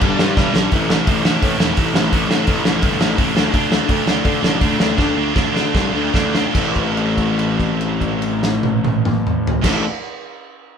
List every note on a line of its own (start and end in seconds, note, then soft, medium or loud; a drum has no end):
0.00 0.13 G1 medium
0.00 0.52 G2 loud
0.00 0.18 G2 medium
0.00 0.53 D3 loud
0.00 0.19 D3 medium
0.00 0.54 G3 loud
0.00 0.19 G3 medium
0.00 0.19 B3 medium
0.00 0.20 D4 loud
0.00 0.33 D5 medium
0.00 kick loud
0.00 crash medium
0.19 0.30 G2 loud
0.19 0.36 G2 loud
0.19 0.36 D3 medium
0.19 0.36 G3 loud
0.19 0.37 B3 loud
0.19 0.37 D4 loud
0.19 snare loud
0.37 0.48 G2 loud
0.37 0.53 G2 medium
0.37 0.53 D3 loud
0.37 0.54 G3 loud
0.37 0.54 B3 loud
0.37 0.54 D4 loud
0.37 kick loud
0.37 snare medium
0.54 0.66 B1 medium
0.54 0.70 G2 medium
0.54 0.71 D3 loud
0.54 0.71 G3 loud
0.54 0.71 B3 loud
0.54 0.71 D4 loud
0.54 snare loud
0.72 0.99 A1 medium
0.72 0.89 A2 medium
0.72 0.89 E3 loud
0.72 0.89 A3 medium
0.72 0.90 C4 loud
0.72 0.91 E4 loud
0.72 kick loud
0.72 open hi-hat medium
0.89 1.06 A2 medium
0.89 1.07 E3 medium
0.89 1.07 A3 medium
0.89 1.07 C4 medium
0.89 1.08 E4 medium
0.89 snare loud
1.07 1.21 A1 medium
1.07 1.23 A2 medium
1.07 1.23 E3 medium
1.07 1.24 A3 medium
1.07 1.24 C4 medium
1.07 1.24 E4 medium
1.07 kick loud
1.07 open hi-hat medium
1.24 1.38 A1 medium
1.24 1.41 A2 medium
1.24 1.41 E3 loud
1.24 1.42 A3 loud
1.24 1.42 C4 loud
1.24 1.42 E4 loud
1.24 snare loud
1.42 1.58 A2 medium
1.42 1.56 A2 medium
1.42 1.58 E3 medium
1.42 1.59 A3 medium
1.42 1.59 C4 medium
1.42 1.59 E4 loud
1.42 kick loud
1.42 open hi-hat medium
1.58 1.72 E1 medium
1.58 1.75 A2 medium
1.58 1.76 E3 loud
1.58 1.77 A3 loud
1.58 1.77 C4 loud
1.58 1.77 E4 loud
1.58 snare loud
1.76 1.91 A1 medium
1.76 1.93 A2 medium
1.76 1.93 E3 medium
1.76 1.94 A3 medium
1.76 1.94 C4 medium
1.76 1.94 E4 medium
1.76 kick loud
1.76 open hi-hat medium
1.94 2.08 A1 medium
1.94 2.10 A2 loud
1.94 2.11 E3 loud
1.94 2.12 A3 medium
1.94 2.12 C4 medium
1.94 2.12 E4 medium
1.94 snare loud
2.12 2.26 A1 medium
2.12 2.28 A2 medium
2.12 2.28 E3 medium
2.12 2.29 A3 medium
2.12 2.28 C4 loud
2.12 2.29 E4 loud
2.12 kick loud
2.12 open hi-hat medium
2.29 2.43 A1 medium
2.29 2.45 A2 medium
2.29 2.46 E3 medium
2.29 2.47 A3 medium
2.29 2.47 C4 medium
2.29 2.47 E4 medium
2.29 snare loud
2.46 2.61 A1 medium
2.46 2.63 A2 medium
2.46 2.63 E3 medium
2.46 2.64 A3 medium
2.46 2.64 C4 medium
2.46 2.64 E4 medium
2.46 kick loud
2.46 open hi-hat medium
2.64 2.79 A1 medium
2.64 2.80 A2 loud
2.64 2.80 E3 medium
2.64 2.82 A3 medium
2.64 2.82 C4 loud
2.64 2.82 E4 loud
2.64 snare loud
2.81 2.96 G1 medium
2.81 2.99 A2 medium
2.81 2.99 E3 medium
2.81 3.00 A3 medium
2.81 3.00 C4 medium
2.81 3.00 E4 medium
2.81 kick loud
2.81 open hi-hat medium
3.00 3.14 A1 medium
3.00 3.16 A2 medium
3.00 3.16 E3 medium
3.00 3.18 A3 loud
3.00 3.17 C4 loud
3.00 3.18 E4 loud
3.00 snare loud
3.17 3.32 A1 medium
3.17 3.34 A2 medium
3.17 3.34 E3 medium
3.17 3.35 A3 medium
3.17 3.35 C4 loud
3.17 3.35 E4 medium
3.17 kick loud
3.17 open hi-hat medium
3.35 3.49 D2 medium
3.35 3.52 D3 loud
3.35 3.53 A3 loud
3.35 3.54 D4 loud
3.35 3.54 F4 loud
3.35 snare loud
3.53 3.81 D2 medium
3.53 3.70 D3 loud
3.53 3.71 A3 loud
3.53 3.71 D4 loud
3.53 3.72 F4 loud
3.53 kick loud
3.53 open hi-hat medium
3.71 3.88 D3 medium
3.71 3.89 A3 medium
3.71 3.89 D4 medium
3.71 3.89 F4 medium
3.71 snare loud
3.88 4.03 D2 medium
3.88 4.06 D3 medium
3.88 4.07 A3 medium
3.88 4.07 D4 medium
3.88 4.08 F4 medium
3.88 kick loud
3.88 open hi-hat medium
4.07 4.20 D2 medium
4.07 4.23 D3 loud
4.07 4.24 A3 loud
4.07 4.24 D4 medium
4.07 4.24 F4 loud
4.07 snare loud
4.25 4.42 D3 medium
4.25 4.39 D3 medium
4.25 4.43 A3 medium
4.25 4.42 D4 medium
4.25 4.43 F4 medium
4.25 kick loud
4.25 open hi-hat medium
4.43 4.57 A1 medium
4.43 4.60 D3 medium
4.43 4.61 A3 loud
4.43 4.60 D4 medium
4.43 4.61 F4 loud
4.43 snare loud
4.61 4.75 D2 medium
4.61 4.78 D3 medium
4.61 4.79 A3 medium
4.61 4.78 D4 medium
4.61 4.79 F4 medium
4.61 kick loud
4.61 open hi-hat medium
4.79 4.94 D2 medium
4.79 4.96 D3 medium
4.79 4.96 A3 medium
4.79 4.97 D4 medium
4.79 4.97 F4 medium
4.79 snare loud
4.97 5.12 D2 medium
4.97 5.14 D3 medium
4.97 5.15 A3 medium
4.97 5.15 D4 loud
4.97 5.15 F4 loud
4.97 kick loud
4.97 snare medium
5.15 5.31 D2 medium
5.15 5.34 D3 medium
5.15 5.34 A3 medium
5.15 5.34 D4 medium
5.15 5.35 F4 medium
5.35 5.51 D2 medium
5.35 5.52 D3 medium
5.35 5.52 A3 medium
5.35 5.53 D4 medium
5.35 5.53 F4 medium
5.35 kick loud
5.35 snare medium
5.53 5.69 D2 medium
5.53 5.72 D3 loud
5.53 5.72 A3 medium
5.53 5.73 D4 medium
5.53 5.73 F4 loud
5.53 snare medium
5.73 5.89 C2 medium
5.73 5.92 D3 medium
5.73 5.92 A3 medium
5.73 5.93 D4 medium
5.73 5.93 F4 medium
5.73 kick loud
5.73 snare medium
5.93 6.09 D2 medium
5.93 6.12 D3 medium
5.93 6.12 A3 medium
5.93 6.13 D4 medium
5.93 6.13 F4 loud
6.13 6.46 D2 medium
6.13 6.32 D3 medium
6.13 6.32 A3 medium
6.13 6.33 D4 loud
6.13 6.33 F4 medium
6.13 kick loud
6.13 snare medium
6.33 6.53 D3 medium
6.33 6.53 A3 medium
6.33 6.53 D4 medium
6.33 6.54 F4 loud
6.33 snare medium
6.53 9.54 A1 medium
6.53 9.61 A2 medium
6.53 9.62 E3 medium
6.53 9.63 A3 medium
6.53 9.64 C4 medium
6.53 9.64 E4 loud
6.53 kick loud
6.53 crash medium
6.57 9.65 A4 loud
6.76 kick medium
6.76 crash soft
6.97 crash soft
7.18 kick medium
7.18 crash soft
7.39 crash soft
7.60 kick medium
7.60 crash soft
7.81 crash soft
8.01 kick medium
8.01 crash soft
8.22 crash soft
8.43 snare medium
8.63 high tom medium
8.84 high tom loud
9.05 mid tom medium
9.27 mid tom medium
9.47 floor tom loud
9.62 9.81 A1 medium
9.62 9.81 A2 medium
9.62 9.82 E3 medium
9.62 9.82 A3 loud
9.62 9.83 C4 medium
9.62 9.83 E4 loud
9.62 kick loud
9.62 snare medium
9.62 crash medium
9.66 9.83 A4 medium